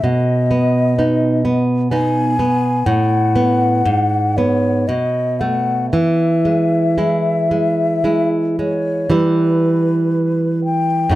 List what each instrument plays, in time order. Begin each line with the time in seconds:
0.03 nylon-string guitar B2, flute D#5
0.51 nylon-string guitar B3
0.98 nylon-string guitar B3 D#4
1.45 nylon-string guitar B3
1.91 nylon-string guitar B3 D#4, flute G#5
2.39 nylon-string guitar B3
2.86 nylon-string guitar A2, flute F#5
3.36 nylon-string guitar B3
3.85 nylon-string guitar G#2
4.37 nylon-string guitar B3, flute C#5
4.88 nylon-string guitar B2, flute D#5
5.40 nylon-string guitar A3, flute F#5
5.92 nylon-string guitar E3, flute E5
6.45 nylon-string guitar G#3
6.98 nylon-string guitar G#3 E4
7.51 nylon-string guitar G#3
8.04 nylon-string guitar G#3 E4
8.59 nylon-string guitar G#3, flute C#5
9.10 nylon-string guitar E3 G3 E4, flute B4
10.65 flute G5
11.09 nylon-string guitar F#2 A3 D#4